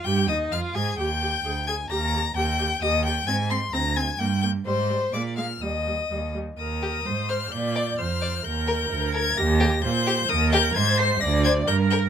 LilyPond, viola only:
\new Staff \with { instrumentName = "Viola" } { \time 2/4 \key ees \major \tempo 4 = 130 g'8 ees'8 f'8 aes'8 | g'8 g'8 aes'8 aes'8 | g'8 g'8 g'8 g'8 | g'8 g'8 c'8 c'8 |
c'8 c'8 bes8 bes8 | g8 g8 aes8 aes8 | g8 g8 g8 g8 | bes'4 c''4 |
d''4 c''4 | bes'2 | g'4 c''4 | bes'4 c''4 |
d''4 bes'4 | }